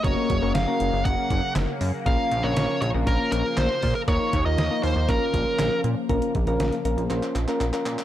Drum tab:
HH |x-x-x-x-x-x-x-o-|x-x-x-x-x-x-x-o-|x-x-x-o-x-x-x-x-|xxxxxxxxxxxxxxxx|
CP |------------x---|------------x---|------------x---|--------xxxxxxxx|
SD |----o-------o---|----o-------o---|----o-------o---|----o-----------|
BD |o-o-----o-o-----|o-------o-----o-|o-o-----o-o-----|o-o-------------|